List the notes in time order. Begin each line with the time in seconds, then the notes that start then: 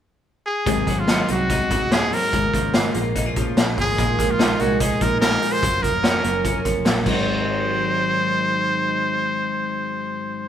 0.46 G#4
0.66 G#1 G#2 D#3 F#3 C4 D#4 G#4, kick, closed hi-hat
0.86 G#1 F#3 C4 D#4 G#4, kick, closed hi-hat
0.99 F4
1.08 G#2 D#3 F#3 C4 C#4 D#4 G#4, snare, closed hi-hat
1.19 D#4
1.28 C2 F#3 C4 D#4 F#4 G#4, closed hi-hat
1.49 F#3 C4 D#4 G#4, kick, closed hi-hat
1.70 F#3 C4 D#4 G#4, kick, closed hi-hat
1.91 G#2 D#3 F#3 C4 D#4 G#4, snare, closed hi-hat
2.11 F#3 C4 D#4 G#4 A#4, open hi-hat
2.32 G#1 G#2 C#3 A#3 C#4 F4 G#4, kick, closed hi-hat
2.54 G#1 F3 A#3 C#4 F4 G#4, kick, closed hi-hat
2.74 G#2 C#3 A#3 C#4 F4 G#4, snare, closed hi-hat
2.94 A#1 A#3 C#4 F4 G#4, closed hi-hat
3.15 A#3 C#4 D#4 F4 G#4, kick, closed hi-hat
3.26 F4
3.36 F3 A#3 C#4 F4 G#4, kick, closed hi-hat
3.57 A#1 G#2 C#3 A#3 C#4 F4 G#4, snare, closed hi-hat
3.77 G#1 F3 A#3 C#4 F4 G#4, kick, open hi-hat
3.97 A#1 A#2 D#3 G#3 D#4 F4 A#4, kick, closed hi-hat
4.18 A#1 F3 G#3 D#4 F4 A#4, kick, closed hi-hat
4.31 F4
4.39 A#2 D#3 G#3 D#4 F4 A#4, snare, closed hi-hat
4.59 C2 G#3 D#4 F4 F#4 A#4, closed hi-hat
4.79 G#3 D#4 F4 G#4 A#4, kick, closed hi-hat
5.00 A#1 F3 G#3 D#4 F4 A#4, kick, closed hi-hat
5.20 A#2 D#3 G#3 F4 A#4, snare, closed hi-hat
5.41 F3 G#3 D#4 F4 A#4, open hi-hat
5.52 C5
5.62 F#1 F#2 F#3 C#4 F4 A#4, kick, closed hi-hat
5.81 F#1 F3 C#4 F4 A#4, kick, closed hi-hat
6.02 F#3 C#4 F4 A#4, snare, closed hi-hat
6.23 F#1 A#3 C#4 F4 A#4, closed hi-hat
6.43 F#3 C#4 F4 A#4, kick, closed hi-hat
6.64 F3 C#4 F4 A#4, kick, closed hi-hat
6.84 A#1 F#3 A#3 C#4 F4 A#4, snare, closed hi-hat
7.02 G#1 G#2 D#3 C5, kick, crash
7.07 F#3 C4 F#4
7.12 D#4 G#4